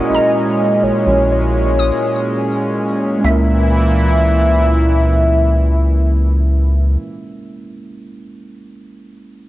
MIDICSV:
0, 0, Header, 1, 6, 480
1, 0, Start_track
1, 0, Tempo, 967742
1, 1608, Time_signature, 4, 2, 24, 8
1, 4707, End_track
2, 0, Start_track
2, 0, Title_t, "Synth pluck"
2, 0, Program_c, 0, 84
2, 0, Note_on_c, 0, 78, 64
2, 72, Note_on_c, 0, 82, 54
2, 887, Note_on_c, 0, 87, 81
2, 1609, Note_on_c, 0, 76, 63
2, 1635, Note_off_c, 0, 78, 0
2, 1767, Note_off_c, 0, 82, 0
2, 1827, Note_off_c, 0, 87, 0
2, 3458, Note_off_c, 0, 76, 0
2, 4707, End_track
3, 0, Start_track
3, 0, Title_t, "Soft synth lead"
3, 0, Program_c, 1, 80
3, 0, Note_on_c, 1, 75, 125
3, 412, Note_on_c, 1, 73, 106
3, 419, Note_off_c, 1, 75, 0
3, 650, Note_off_c, 1, 73, 0
3, 653, Note_on_c, 1, 73, 107
3, 1350, Note_off_c, 1, 73, 0
3, 1614, Note_on_c, 1, 76, 105
3, 3462, Note_off_c, 1, 76, 0
3, 4707, End_track
4, 0, Start_track
4, 0, Title_t, "Tine electric piano"
4, 0, Program_c, 2, 4
4, 0, Control_c, 2, 64, 127
4, 0, Note_on_c, 2, 56, 102
4, 0, Note_on_c, 2, 61, 93
4, 0, Note_on_c, 2, 64, 99
4, 0, Note_on_c, 2, 66, 93
4, 0, Note_on_c, 2, 70, 112
4, 43, Note_off_c, 2, 56, 0
4, 43, Note_on_c, 2, 56, 73
4, 46, Note_off_c, 2, 61, 0
4, 46, Note_on_c, 2, 61, 72
4, 50, Note_off_c, 2, 64, 0
4, 50, Note_on_c, 2, 64, 70
4, 54, Note_off_c, 2, 66, 0
4, 54, Note_on_c, 2, 66, 70
4, 58, Note_on_c, 2, 68, 70
4, 85, Note_off_c, 2, 68, 0
4, 90, Note_off_c, 2, 70, 0
4, 90, Note_on_c, 2, 70, 86
4, 416, Note_off_c, 2, 56, 0
4, 418, Note_off_c, 2, 61, 0
4, 420, Note_off_c, 2, 64, 0
4, 422, Note_off_c, 2, 66, 0
4, 440, Note_off_c, 2, 70, 0
4, 523, Note_on_c, 2, 56, 76
4, 527, Note_on_c, 2, 61, 70
4, 531, Note_on_c, 2, 64, 69
4, 533, Note_on_c, 2, 66, 66
4, 538, Note_on_c, 2, 70, 80
4, 1268, Note_off_c, 2, 56, 0
4, 1269, Note_off_c, 2, 61, 0
4, 1271, Note_off_c, 2, 64, 0
4, 1273, Note_off_c, 2, 66, 0
4, 1275, Note_off_c, 2, 70, 0
4, 1580, Note_on_c, 2, 56, 90
4, 1595, Note_on_c, 2, 61, 80
4, 1610, Note_on_c, 2, 58, 84
4, 1614, Control_c, 2, 64, 0
4, 1625, Note_on_c, 2, 64, 81
4, 1639, Note_on_c, 2, 70, 95
4, 1713, Control_c, 2, 64, 127
4, 3429, Note_off_c, 2, 56, 0
4, 3444, Note_off_c, 2, 61, 0
4, 3459, Note_off_c, 2, 58, 0
4, 3473, Note_off_c, 2, 64, 0
4, 3488, Note_off_c, 2, 70, 0
4, 4707, End_track
5, 0, Start_track
5, 0, Title_t, "Analog synth pad"
5, 0, Program_c, 3, 89
5, 0, Note_on_c, 3, 46, 83
5, 0, Note_on_c, 3, 56, 72
5, 0, Note_on_c, 3, 61, 90
5, 1587, Note_off_c, 3, 56, 0
5, 1588, Note_off_c, 3, 46, 0
5, 1588, Note_off_c, 3, 61, 0
5, 1608, Note_on_c, 3, 46, 82
5, 1608, Note_on_c, 3, 52, 77
5, 1608, Note_on_c, 3, 64, 89
5, 3457, Note_off_c, 3, 46, 0
5, 3457, Note_off_c, 3, 52, 0
5, 3457, Note_off_c, 3, 64, 0
5, 4707, End_track
6, 0, Start_track
6, 0, Title_t, "Analog synth bass"
6, 0, Program_c, 4, 38
6, 49, Note_on_c, 4, 34, 51
6, 97, Note_off_c, 4, 34, 0
6, 409, Note_on_c, 4, 34, 50
6, 456, Note_off_c, 4, 34, 0
6, 529, Note_on_c, 4, 34, 86
6, 948, Note_off_c, 4, 34, 0
6, 1608, Note_on_c, 4, 37, 107
6, 3456, Note_off_c, 4, 37, 0
6, 4707, End_track
0, 0, End_of_file